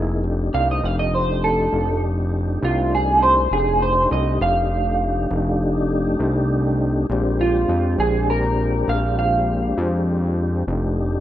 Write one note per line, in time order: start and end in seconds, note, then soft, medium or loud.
0.00 0.50 F1 medium
0.00 0.25 A#3 soft
0.00 0.23 D#4 medium
0.00 0.25 E4 medium
0.00 0.25 G#4 medium
0.24 3.48 A3 medium
0.24 3.49 D4 soft
0.24 3.49 D#4 medium
0.24 3.48 G4 medium
0.54 0.82 C2 medium
0.54 0.69 F5 medium
0.71 0.85 D#5 medium
0.83 1.69 F1 medium
0.83 0.99 F5 medium
0.99 1.14 D#5 medium
1.14 1.43 C5 medium
1.44 2.02 A4 medium
1.73 2.59 F1 medium
2.62 3.48 C2 medium
2.62 2.93 F4 medium
2.95 3.23 G#4 medium
3.22 3.51 C5 medium
3.51 4.07 F1 medium
3.51 7.07 A3 medium
3.51 7.07 D4 medium
3.51 7.07 D#4 medium
3.51 7.07 G4 medium
3.51 3.82 G#4 medium
3.82 4.11 C5 medium
4.11 4.39 C2 medium
4.11 4.41 D#5 medium
4.41 5.27 F1 medium
4.41 6.17 F5 medium
5.31 6.16 F1 medium
6.20 7.06 C2 medium
7.10 7.66 A#1 medium
7.10 10.66 G#3 medium
7.10 10.66 C4 medium
7.10 10.66 D4 medium
7.10 10.66 G4 medium
7.41 7.98 F4 medium
7.69 7.97 F2 medium
7.99 8.85 A#1 medium
7.99 8.29 G#4 medium
8.30 8.88 A#4 medium
8.88 9.74 A#1 medium
8.88 9.18 F5 medium
9.19 9.77 F5 medium
9.78 10.64 F2 medium
10.67 11.20 F1 loud
10.67 11.20 A3 medium
10.67 11.20 D4 medium
10.67 11.20 D#4 medium
10.67 11.20 G4 medium